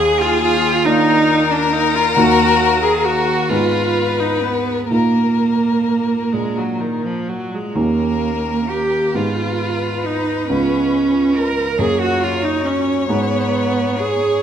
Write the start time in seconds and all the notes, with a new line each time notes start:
Already playing: D#2 G#4
0.20 F4
0.42 F4
0.85 A#3 D4 D#4 F4 A#4
1.50 D4
1.73 D#4
1.94 F4
2.16 D#2 A#3 D#4 F#4
2.83 G#4
3.04 F#4
3.49 G#2 B3 D#4 F4 G#4 B4
4.20 D#4
4.43 B3
4.90 A#2 A#3 D#4 F4 A#4
6.33 A#2 G#3 A#3 D4 F4
6.56 F#3
6.79 D#3
7.03 F3
7.26 F#3
7.51 G#3
7.74 D#2 A#3 C#4 D#4 G4 A#4
8.68 G4
9.14 G#2 B3 D#4 F4 G#4 B4
10.05 D#4
10.48 C#2 B3 C#4 F4 G#4
11.35 A#4
11.78 F#2 A#3 F#4 G#4 A#4 C#5
11.99 F#4
12.20 F4
12.42 D#4
12.64 C#4
13.08 G#2 B3 D#4 G#4
13.98 G#4